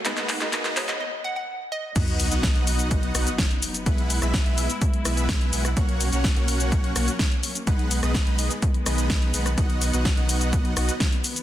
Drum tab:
CC |----------------|x---------------|----------------|----------------|
HH |xxoxxxox--------|xxoxxxoxxxoxxxox|xxoxxxoxxxoxxxox|xxoxxxoxxxoxxxox|
SH |----------------|x-xxx-xxx-xxx-xx|x-xxx-xxx-xxx-xx|x-xxx-xxx-xxx-xx|
CP |xxxxxxxx--------|----------------|----------------|----------------|
SD |----------------|----o-----r-o---|---ro-----r-o--r|----o-----r-o---|
BD |----------------|o---o---o---o---|o---o---o---o---|o---o---o---o---|

CC |----------------|----------------|
HH |xxoxxxoxxxoxxxox|xxoxxxoxxxoxxxox|
SH |x-xxx-xxx-xxx-xx|x-xxx-xxx-xxx-xx|
CP |----------------|----------------|
SD |---ro-----r-o--r|----o-----r-o---|
BD |o---o---o---o---|o---o---o---o---|